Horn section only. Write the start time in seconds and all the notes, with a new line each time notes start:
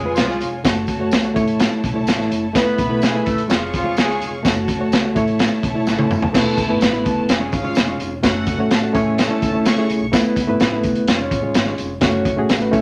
Already playing: G#3 G#4
0.15 F3 F4
2.55 B3 B4
3.03 G#3 G#4
3.26 A3 A4
3.50 F3 F4
3.74 F3 F4
3.97 G#3 G#4
6.33 B2 E3 A3 E4
7.29 F3 G#3 C#4 G#4
8.24 F#3 A3 C#4 A4
8.94 E3 A3 C#4 A4
10.13 B3 E4 B4
11.08 G#3 C#4 F4 C#5
12.03 A3 C#4 F#4 C#5
12.74 C#4 E4 A4 E5